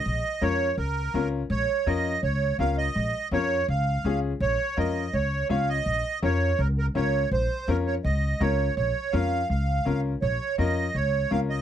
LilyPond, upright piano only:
\new Staff \with { instrumentName = "Upright piano" } { \time 4/4 \key bes \minor \tempo 4 = 165 r4 <des' f' bes'>8 r4. <des' f' bes'>8 r8 | r4 <des' f' bes'>8 r4. <des' f' bes'>8 r8 | r4 <des' f' bes'>8 r4. <des' f' aes'>8 r8 | r4 <des' f' bes'>8 r4. <des' f' des''>8 r8 |
r4 <des' f' bes'>8 r4. <des' f' bes'>8 r8 | r4 <des' f' bes'>8 r4. <des' f' bes'>8 r8 | r4 <des' f' bes'>8 r4. <des' f' bes'>8 r8 | r4 <des' f' bes'>8 r4. <des' f' bes'>8 r8 | }